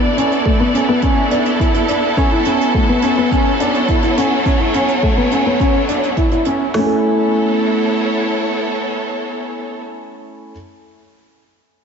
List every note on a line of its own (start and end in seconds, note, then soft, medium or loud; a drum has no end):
0.00 6.73 B3 medium
0.00 0.12 D4 medium
0.00 6.74 E4 medium
0.00 6.74 A4 medium
0.00 2.17 D5 medium
0.17 0.35 C#4 medium
0.17 closed hi-hat medium
0.31 closed hi-hat soft
0.45 0.54 A3 medium
0.45 kick medium
0.60 0.69 B3 medium
0.74 0.83 C#4 medium
0.74 closed hi-hat medium
0.88 0.97 B3 medium
1.02 1.20 C#4 medium
1.02 kick medium
1.02 closed hi-hat soft
1.31 1.49 D4 medium
1.31 closed hi-hat medium
1.45 closed hi-hat soft
1.60 1.69 E4 medium
1.60 kick medium
1.60 closed hi-hat soft
1.74 1.83 E4 medium
1.74 closed hi-hat soft
1.88 2.06 D4 medium
1.88 closed hi-hat medium
2.17 6.74 F#3 medium
2.17 2.26 C#4 medium
2.17 kick medium
2.17 closed hi-hat soft
2.32 2.40 E4 medium
2.45 2.63 C#4 medium
2.45 closed hi-hat medium
2.61 closed hi-hat soft
2.74 2.83 A3 medium
2.74 kick medium
2.89 2.97 B3 medium
3.02 3.12 C#4 medium
3.02 closed hi-hat medium
3.17 3.26 B3 medium
3.26 6.75 C#5 medium
3.31 3.49 C#4 medium
3.31 kick medium
3.31 closed hi-hat soft
3.60 3.78 D4 medium
3.60 closed hi-hat medium
3.74 closed hi-hat soft
3.88 3.97 E4 medium
3.88 kick medium
3.88 closed hi-hat soft
4.02 4.12 E4 medium
4.02 closed hi-hat soft
4.17 4.35 C#4 medium
4.17 closed hi-hat medium
4.46 4.55 C#4 medium
4.46 kick medium
4.46 closed hi-hat soft
4.60 4.69 E4 medium
4.74 4.92 C#4 medium
4.74 closed hi-hat medium
4.88 closed hi-hat soft
5.03 5.12 A3 medium
5.03 kick medium
5.17 5.26 B3 medium
5.31 5.40 C#4 medium
5.31 closed hi-hat medium
5.46 5.55 B3 medium
5.60 5.78 C#4 medium
5.60 kick medium
5.60 closed hi-hat soft
5.88 6.06 D4 medium
5.88 closed hi-hat medium
6.03 closed hi-hat soft
6.17 6.26 E4 medium
6.17 kick medium
6.17 closed hi-hat soft
6.31 6.40 E4 medium
6.31 closed hi-hat soft
6.45 6.63 C#4 medium
6.45 closed hi-hat medium
6.74 10.49 A3 medium
6.74 9.79 B3 medium
6.74 snare medium
6.74 open hi-hat medium
6.78 10.51 C#4 medium
6.78 10.53 E4 medium
6.83 9.79 E4 medium
6.83 10.55 A4 medium
6.92 9.79 A4 medium
7.00 9.79 C#5 medium